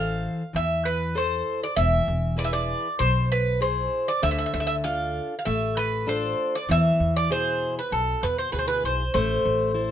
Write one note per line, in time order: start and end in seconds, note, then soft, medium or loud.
0.00 0.27 A1 medium
0.00 0.42 E3 soft
0.00 0.42 A4 soft
0.00 0.42 C5 medium
0.00 0.56 F5 loud
0.53 1.40 E2 medium
0.53 1.14 E3 medium
0.53 0.87 E5 loud
0.85 1.14 B4 medium
1.15 1.65 E4 medium
1.15 1.65 A4 soft
1.15 1.65 C5 medium
1.15 1.60 C5 medium
1.63 1.76 D5 medium
1.76 1.99 E1 loud
1.76 2.37 E3 medium
1.76 2.34 E5 medium
2.08 2.72 E1 medium
2.37 2.87 E4 soft
2.37 2.87 G#4 soft
2.37 2.87 B4 medium
2.37 2.44 D5 medium
2.44 2.52 E5 medium
2.53 3.02 D5 loud
2.99 3.86 B1 medium
2.99 3.60 B2 medium
2.99 3.28 C5 medium
3.32 3.60 B4 loud
3.61 4.10 E4 soft
3.61 4.10 G#4 soft
3.61 4.09 C5 medium
4.08 4.23 D5 medium
4.23 4.44 D2 loud
4.23 4.82 D3 medium
4.23 4.30 E5 loud
4.31 4.37 E5 medium
4.38 4.45 E5 medium
4.46 4.53 E5 medium
4.54 5.18 D2 medium
4.54 4.59 E5 medium
4.60 4.66 E5 medium
4.67 4.74 E5 medium
4.84 5.33 D4 soft
4.84 5.34 F4 medium
4.84 5.34 A4 soft
4.84 5.35 F5 loud
5.39 5.45 F5 medium
5.45 6.32 A1 loud
5.45 6.06 A3 medium
5.45 5.77 E5 medium
5.77 6.05 B4 medium
6.07 6.56 D4 soft
6.07 6.57 F4 soft
6.07 6.57 A4 medium
6.07 6.56 C5 medium
6.55 6.69 D5 medium
6.69 6.91 E2 loud
6.69 7.28 E3 medium
6.69 7.13 E5 medium
7.00 7.64 E2 medium
7.16 7.30 D5 medium
7.30 7.79 B2 medium
7.30 7.79 E4 soft
7.30 7.80 G#4 medium
7.30 7.74 C5 medium
7.79 7.92 B4 medium
7.91 8.13 B1 medium
7.91 8.51 B2 medium
7.91 8.24 A4 medium
8.23 8.50 E2 medium
8.23 8.38 B4 medium
8.38 8.52 C5 medium
8.52 8.81 D2 medium
8.52 9.02 B2 soft
8.52 9.03 E4 medium
8.52 9.03 G#4 soft
8.52 8.58 B4 medium
8.59 8.66 C5 medium
8.68 8.83 B4 medium
8.84 9.12 B1 medium
8.84 9.13 C5 medium
9.14 9.36 A1 loud
9.14 9.74 A3 medium
9.14 9.91 C5 medium
9.45 9.91 A1 medium
9.74 9.91 E4 soft
9.74 9.91 A4 soft
9.74 9.91 C5 medium